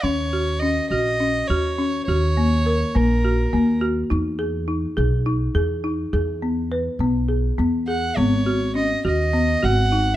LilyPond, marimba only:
\new Staff \with { instrumentName = "Marimba" } { \time 7/8 \key dis \phrygian \tempo 4 = 103 cis'8 fis'8 cis'8 fis'8 cis'8 fis'8 cis'8 | fis'8 ais8 ais'8 ais8 fis'8 ais8 fis'8 | dis'8 gis'8 dis'8 gis'8 dis'8 gis'8 dis'8 | gis'8 b8 b'8 b8 gis'8 b8 gis'8 |
b8 fis'8 cis'8 fis'8 b8 fis'8 dis'8 | }